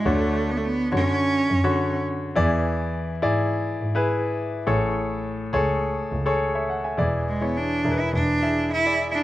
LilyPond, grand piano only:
<<
  \new Staff \with { instrumentName = "Grand piano" } { \time 4/4 \key e \mixolydian \tempo 4 = 104 << { r1 | r1 | r2. r16 <cis'' e''>16 fis''16 <e'' gis''>16~ | <e'' gis''>16 r2. r8. | } \\ { <d' fis' cis''>4~ <d' fis' cis''>16 r16 <d fis' cis''>4 r16 <d fis' cis''>4 r16 | <e' gis' d''>4~ <e' gis' d''>16 r16 <e' gis' d''>4 r16 <e' gis' b'>4 r16 | <gis' a' cis''>4~ <gis' a' cis''>16 r16 <gis' a' cis''>4 r16 <gis' a' cis''>4 r16 | <e' gis' d''>8. <e' gis' cis''>8. <e' gis' ais' b'>8. r16 <e' gis' e''>8. <e' gis' d''>8. | } >> }
  \new Staff \with { instrumentName = "Grand piano" } { \clef bass \time 4/4 \key e \mixolydian d4. r2 r8 | e4. r2 r8 | a,4. r2 r8 | e4. r2 r8 | }
>>